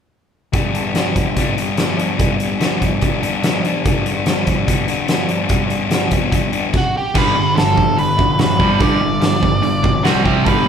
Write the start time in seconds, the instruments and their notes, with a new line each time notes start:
0.53 distorted electric guitar G2 D3 G3 B3 D4, kick, closed hi-hat
0.75 closed hi-hat
0.94 distorted electric guitar D3 G3 B3 D4, snare, closed hi-hat
1.16 kick, closed hi-hat
1.36 distorted electric guitar G2 D3 G3 B3 D4, kick, closed hi-hat
1.57 distorted electric guitar G3 B3 D4, closed hi-hat
1.77 distorted electric guitar D3 G3 B3 D4, snare, closed hi-hat
1.97 distorted electric guitar G3 B3 D4, closed hi-hat
2.18 distorted electric guitar G2 D3 G3 B3 D4, kick, closed hi-hat
2.40 closed hi-hat
2.60 distorted electric guitar D3 G3 B3 D4, snare, closed hi-hat
2.82 kick, closed hi-hat
3.02 distorted electric guitar G2 D3 G3 B3 D4, kick, closed hi-hat
3.22 distorted electric guitar G3 B3 D4, closed hi-hat
3.43 distorted electric guitar D3 G3 B3 D4, snare, closed hi-hat
3.64 distorted electric guitar G3 B3 D4, closed hi-hat
3.85 distorted electric guitar G2 D3 G3 B3 D4, kick, closed hi-hat
4.06 closed hi-hat
4.26 distorted electric guitar D3 G3 B3 D4, snare, closed hi-hat
4.47 kick, closed hi-hat
4.68 distorted electric guitar G2 D3 G3 B3 D4, kick, closed hi-hat
4.88 distorted electric guitar G3 B3 D4, closed hi-hat
5.08 distorted electric guitar D3 G3 B3 D4, snare, closed hi-hat
5.29 distorted electric guitar G3 B3 D4, closed hi-hat
5.49 distorted electric guitar G2 D3 G3 B3 D4, kick, closed hi-hat
5.70 closed hi-hat
5.90 distorted electric guitar D3 G3 B3 D4, snare, closed hi-hat
6.11 kick, closed hi-hat
6.31 distorted electric guitar G2 D3 G3 B3 D4, kick, closed hi-hat
6.52 distorted electric guitar G3 B3 D4, closed hi-hat
6.73 lead electric guitar F#4, kick, crash
6.97 lead electric guitar G4
7.15 picked electric bass G1, distorted electric guitar G2 D3 G3, lead electric guitar B4, kick, crash
7.35 picked electric bass G1, distorted electric guitar G2 D3
7.56 picked electric bass G1, distorted electric guitar G2 D3, lead electric guitar A4, snare, open hi-hat
7.77 distorted electric guitar G2 D3, kick
7.97 picked electric bass G1, distorted electric guitar G2 D3, lead electric guitar B4, open hi-hat
8.17 distorted electric guitar G2 D3, kick
8.38 picked electric bass E1, distorted electric guitar G2 D3, lead electric guitar B4, snare, open hi-hat
8.59 picked electric bass G1, distorted electric guitar G2 D3 G3, kick
8.80 picked electric bass G1, distorted electric guitar G2 D3 G3, lead electric guitar D5, kick, open hi-hat
9.01 picked electric bass G1, distorted electric guitar G2 D3
9.21 picked electric bass G1, distorted electric guitar G2 D3, snare, open hi-hat
9.41 picked electric bass G1, distorted electric guitar G2 D3, kick
9.62 picked electric bass G1, distorted electric guitar G2 D3, open hi-hat
9.83 picked electric bass B1, distorted electric guitar G2 D3, kick
10.04 picked electric bass C2, distorted electric guitar C3 G3 C4, lead electric guitar F#4, snare, open hi-hat
10.24 picked electric bass C2, distorted electric guitar C3 G3 C4, lead electric guitar G4, kick
10.44 picked electric bass G1, distorted electric guitar G2 D3 G3, lead electric guitar B4, kick, open hi-hat